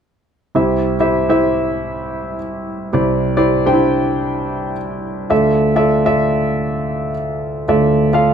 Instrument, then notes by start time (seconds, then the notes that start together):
grand piano
0.55 C2 C3 E4 G4 C5 E5
1.00 E4 G4 C5 E5
1.29 E4 G4 C5 E5
2.93 C2 C3 E4 G4 C5 D5
3.37 E4 G4 C5 D5
3.66 D4 G4 C5 G5
3.73 E4
5.30 D2 D3 F4 A4 D5 E5
5.76 F4 A4 D5 E5
6.05 F4 A4 D5 E5
7.68 D2 D3 F4 A4 D5 E5
8.13 F4 A4 D5 F5